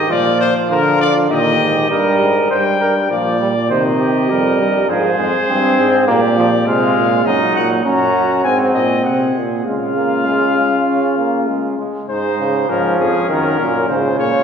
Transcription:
0.00 0.12 D#3 medium
0.00 0.12 G4 medium
0.10 0.49 A#2 medium
0.10 1.29 F3 medium
0.10 0.70 F4 medium
0.10 0.40 D5 medium
0.41 0.54 C5 medium
0.70 1.26 D3 medium
0.70 1.33 F4 medium
0.70 1.00 A#4 medium
1.01 1.14 D5 medium
1.30 1.59 A#2 medium
1.30 1.89 D#3 medium
1.30 1.90 G4 medium
1.30 1.90 D#5 medium
1.60 1.90 G#2 medium
1.90 2.20 G2 medium
1.90 2.34 G3 medium
1.90 2.50 A#4 medium
1.90 2.50 D#5 medium
2.21 2.50 G#2 medium
2.50 2.79 G2 medium
2.50 3.07 G3 medium
2.50 2.64 C5 medium
2.50 3.07 G5 medium
2.80 3.10 G2 medium
2.80 2.94 A#4 medium
3.10 3.72 A#2 medium
3.10 3.40 F3 medium
3.10 3.69 D5 medium
3.10 3.70 D5 medium
3.41 3.54 G3 medium
3.70 4.32 C3 medium
3.70 4.29 D#3 medium
3.70 3.84 C5 medium
3.70 4.87 D#5 medium
4.00 4.32 G4 medium
4.30 4.62 F2 medium
4.30 4.91 G3 medium
4.30 4.91 A#4 medium
4.60 4.89 G2 medium
4.89 5.18 G#2 medium
4.89 5.19 F3 medium
4.89 6.07 G#4 medium
4.89 6.06 C5 medium
5.19 5.32 F2 medium
5.19 5.32 G#3 medium
5.49 5.80 G2 medium
5.49 6.07 C4 loud
5.78 6.10 G#2 medium
6.07 6.66 A#2 medium
6.07 6.21 A#3 loud
6.07 6.66 G4 medium
6.07 6.68 D5 medium
6.37 6.50 F3 medium
6.67 6.96 C3 medium
6.67 7.24 G#3 loud
6.67 7.25 F4 medium
6.67 7.27 F5 medium
6.96 7.25 A#2 medium
7.26 7.39 F#2 medium
7.26 7.84 F#3 medium
7.26 7.84 D#4 medium
7.26 7.55 D#5 medium
7.55 7.84 A#2 medium
7.55 7.69 F#5 medium
7.85 8.44 F#2 medium
7.85 8.46 C#4 medium
7.85 8.75 F#4 medium
7.85 8.44 A#5 medium
8.44 8.74 G#2 medium
8.44 9.37 C4 medium
8.44 8.58 G#5 medium
8.74 9.06 A#2 medium
8.74 9.04 D#5 medium
9.05 9.34 C3 medium
9.05 9.62 G#4 medium
9.05 9.43 F#5 medium
9.35 9.65 A#2 medium
9.65 11.75 C#3 medium
9.65 9.94 G#3 medium
9.65 11.75 F4 medium
9.65 11.75 F5 medium
9.97 10.28 A#3 medium
10.26 10.56 G#3 medium
10.57 10.71 G#3 medium
10.88 11.17 C#4 medium
11.18 11.50 A#3 medium
11.48 11.78 G#3 medium
11.79 12.08 G#3 medium
12.09 12.66 G#2 medium
12.09 12.37 G#3 medium
12.09 12.71 D#4 medium
12.09 12.71 C5 medium
12.39 12.69 C#3 medium
12.69 12.99 G#2 medium
12.69 13.28 F3 medium
12.69 13.88 C#4 medium
12.69 12.98 A#4 medium
12.99 13.13 F2 medium
12.99 13.28 G#4 medium
13.29 13.58 F#2 medium
13.29 13.60 D#3 medium
13.29 13.88 A#4 medium
13.59 13.88 F#2 medium
13.59 13.88 A#2 medium
13.89 14.18 G#2 medium
13.89 14.44 C#3 medium
13.89 14.44 F4 medium
13.89 14.18 C5 medium
14.19 14.32 A#2 medium
14.19 14.44 C#5 medium

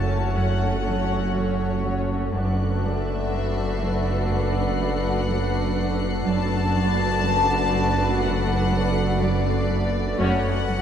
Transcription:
0.00 2.29 F#1 medium
0.00 2.29 F#1 soft
0.00 0.16 F#2 soft
0.00 2.29 F#2 soft
0.00 2.29 A3 soft
0.00 2.29 C#4 soft
0.00 0.80 E4 soft
0.00 2.29 F#4 soft
0.00 2.30 A4 medium
0.00 2.29 C#5 soft
0.00 2.30 C#5 medium
0.00 0.81 E5 soft
0.00 2.30 F#5 medium
0.00 0.35 A5 medium
0.35 0.66 F#2 medium
0.35 1.32 F#5 medium
0.86 1.15 F#3 soft
1.35 1.64 F#3 soft
1.35 2.33 C#5 medium
1.84 2.15 F#2 soft
1.84 4.76 F#5 soft
2.33 6.23 F#1 soft
2.33 6.23 F#1 medium
2.33 6.23 F#2 medium
2.33 2.63 F#2 medium
2.33 6.22 A3 soft
2.33 6.23 D4 soft
2.33 6.23 F#4 soft
2.33 6.23 A4 medium
2.33 6.26 B4 medium
2.33 6.23 B4 soft
2.33 6.26 D5 medium
2.33 9.66 F#6 soft
2.83 3.13 F#2 soft
2.83 5.74 D5 soft
2.83 4.27 E5 medium
3.32 3.62 F#2 soft
3.32 9.66 C7 soft
3.82 4.11 F#2 soft
4.30 4.60 F#2 medium
4.30 6.26 F#5 medium
4.80 5.09 F#3 soft
5.29 5.58 F#3 soft
5.77 6.07 F#2 soft
6.27 10.15 F#1 medium
6.27 6.56 F#2 medium
6.27 10.15 F#2 medium
6.27 10.15 A3 medium
6.27 10.15 D4 medium
6.27 10.15 F#4 medium
6.27 10.15 A4 medium
6.27 10.15 B4 medium
6.27 10.15 D5 medium
6.27 8.20 A5 loud
6.75 7.05 F#2 soft
7.25 7.54 F#2 soft
7.74 8.03 F#2 medium
8.23 8.53 F#2 medium
8.23 9.21 F#5 medium
8.72 9.01 F#3 soft
9.21 9.50 F#3 medium
9.21 10.19 D5 medium
9.70 10.00 F#2 soft
10.18 10.82 F#1 medium
10.18 10.27 F#1 medium
10.18 10.27 F#2 medium
10.18 10.49 F#2 medium
10.18 10.41 A3 medium
10.18 10.41 C#4 medium
10.18 10.42 F#4 medium
10.18 10.82 A4 medium
10.18 10.42 C#5 medium
10.18 10.82 C#5 medium
10.18 10.82 F#5 loud
10.18 10.82 A5 medium
10.69 10.82 F#2 medium
10.69 10.82 F#4 soft
10.69 10.82 F#5 soft

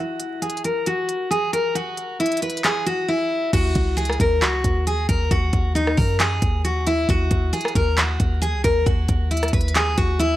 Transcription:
0.00 0.40 F#4 loud
0.20 closed hi-hat medium
0.42 0.62 G#4 medium
0.42 closed hi-hat medium
0.50 closed hi-hat soft
0.57 closed hi-hat soft
0.64 0.85 A#4 medium
0.64 closed hi-hat medium
0.86 1.28 F#4 medium
0.86 closed hi-hat medium
1.09 closed hi-hat medium
1.31 1.51 G#4 medium
1.31 closed hi-hat medium
1.53 1.74 A#4 medium
1.53 closed hi-hat medium
1.75 2.17 F#4 medium
1.75 closed hi-hat medium
1.97 closed hi-hat medium
2.20 2.40 E4 medium
2.20 closed hi-hat medium
2.26 closed hi-hat medium
2.32 closed hi-hat medium
2.37 closed hi-hat medium
2.42 2.63 B4 medium
2.42 closed hi-hat medium
2.50 closed hi-hat medium
2.57 closed hi-hat medium
2.64 2.85 G#4 medium
2.64 clap loud
2.64 closed hi-hat medium
2.86 3.07 F#4 medium
2.86 closed hi-hat medium
3.08 3.50 E4 medium
3.53 3.75 D#2 loud
3.53 3.95 F#4 loud
3.53 kick loud
3.53 closed hi-hat medium
3.53 crash medium
3.75 4.18 C#2 loud
3.75 kick medium
3.75 closed hi-hat medium
3.97 4.18 G#4 medium
3.97 closed hi-hat medium
4.05 closed hi-hat medium
4.10 cross-stick loud
4.10 closed hi-hat soft
4.20 4.44 D#2 loud
4.20 4.41 A#4 medium
4.20 kick loud
4.20 closed hi-hat medium
4.42 4.63 C#2 loud
4.42 4.84 F#4 medium
4.42 clap loud
4.42 closed hi-hat medium
4.64 5.07 D#2 loud
4.64 kick loud
4.64 closed hi-hat medium
4.87 5.07 G#4 medium
4.87 closed hi-hat medium
5.09 5.30 D#2 loud
5.09 5.29 A#4 medium
5.09 kick medium
5.09 closed hi-hat medium
5.31 5.52 D#2 loud
5.31 5.73 F#4 loud
5.31 kick loud
5.31 closed hi-hat medium
5.53 5.96 D#2 loud
5.53 kick medium
5.53 closed hi-hat medium
5.75 5.96 D#4 medium
5.75 closed hi-hat medium
5.87 cross-stick loud
5.97 6.40 F#2 loud
5.97 6.18 A#4 medium
5.97 kick loud
5.97 open hi-hat medium
6.20 6.61 G#4 medium
6.20 clap loud
6.20 closed hi-hat medium
6.42 7.06 D#2 loud
6.42 kick loud
6.42 closed hi-hat medium
6.64 6.85 F#4 medium
6.64 closed hi-hat medium
6.87 7.07 E4 medium
6.87 closed hi-hat medium
7.09 7.30 D#2 loud
7.09 7.51 F#4 loud
7.09 kick loud
7.09 closed hi-hat medium
7.31 7.52 D#2 loud
7.31 kick medium
7.31 closed hi-hat medium
7.53 7.73 G#4 medium
7.53 closed hi-hat medium
7.61 closed hi-hat medium
7.65 cross-stick loud
7.65 closed hi-hat soft
7.75 8.18 D#2 loud
7.75 7.96 A#4 medium
7.75 kick loud
7.75 closed hi-hat medium
7.97 8.39 F#4 medium
7.97 clap loud
7.97 closed hi-hat medium
8.20 8.55 D#2 loud
8.20 kick loud
8.20 closed hi-hat medium
8.42 8.62 G#4 medium
8.42 closed hi-hat medium
8.54 8.64 C#2 loud
8.64 8.86 D#2 loud
8.64 8.85 A#4 medium
8.64 kick medium
8.64 closed hi-hat medium
8.86 9.08 D#2 loud
8.86 9.28 F#4 medium
8.86 kick loud
8.86 closed hi-hat medium
9.09 9.52 D#2 loud
9.09 kick medium
9.09 closed hi-hat medium
9.31 9.51 E4 medium
9.31 closed hi-hat medium
9.37 closed hi-hat medium
9.43 cross-stick loud
9.43 closed hi-hat medium
9.48 closed hi-hat medium
9.53 9.96 D#2 loud
9.53 9.74 B4 medium
9.53 kick loud
9.53 closed hi-hat medium
9.61 closed hi-hat medium
9.68 closed hi-hat medium
9.75 9.96 G#4 medium
9.75 clap loud
9.75 closed hi-hat medium
9.98 10.37 D#2 loud
9.98 10.18 F#4 medium
9.98 kick medium
9.98 closed hi-hat medium
10.19 10.37 E4 medium
10.19 closed hi-hat medium

